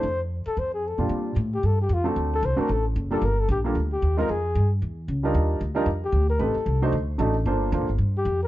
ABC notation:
X:1
M:4/4
L:1/16
Q:"Swing" 1/4=226
K:F
V:1 name="Flugelhorn"
c2 z4 A2 c2 _A2 =A3 z | [K:Bb] z6 G2 A2 G2 F2 z2 | z2 A2 c2 B2 A2 z4 A2 | B2 A2 G2 z4 G4 B2 |
_A6 z8 z2 | z8 z2 G4 B2 | A6 z8 z2 | z8 z2 G4 B2 |]
V:2 name="Grand piano"
z12 z2 [B,,G,CDF]2- | [K:Bb] [B,,G,CDF]4 z8 z2 [A,CD_GA]2- | [A,CD_GA]4 z2 [A,CD^FA]2 z6 [=G,B,D=FA]2 | z6 [G,B,DFA]2 z6 [_A,CEFB]2 |
z12 z2 [G,DEF^A]2- | [G,DEF^A]4 z2 [G,DEFB]2 z8 | [A,CEG_c]2 z4 [A,DE_G=c]2 z4 [A,DE^FA]2 z2 | [B,DFAc]4 [B,DFAc]2 z8 z2 |]
V:3 name="Upright bass" clef=bass
F,,6 z2 F,,6 F,,2 | [K:Bb] B,,4 A,,4 G,,4 F,,4 | D,,4 C,,2 z2 A,,,4 ^F,,,4 | G,,,4 B,,,4 D,,4 E,,4 |
F,,4 G,,4 =E,,4 ^C,,4 | E,,4 D,,4 F,,4 D,,4 | A,,,2 z2 C,,4 D,,4 A,,,4 | G,,,4 (3D,,2 B,,,2 G,,,2 G,,4 F,,4 |]